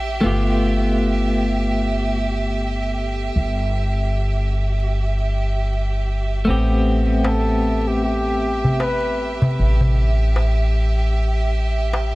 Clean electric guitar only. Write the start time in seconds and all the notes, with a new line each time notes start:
Already playing: A3 B3 C4 G4
0.21 A3 B3 F4
0.27 G4
6.45 A3 B3 C4
6.50 G4